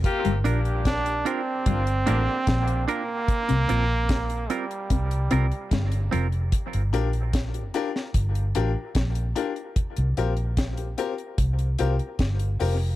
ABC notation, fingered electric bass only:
X:1
M:4/4
L:1/16
Q:1/4=74
K:Gm
V:1 name="Fingered electric bass" clef=bass
z G,,, B,,,4 z2 G,,,2 A,,, z B,,,2 z2 | z C,, B,,,4 z2 C,,2 C,, z G,,,2 F,,,2 | z G,,, B,,,4 z2 G,,,2 A,,, z B,,,2 z2 | z C,, B,,,4 z2 C,,2 C,, z G,,,2 F,,,2 |]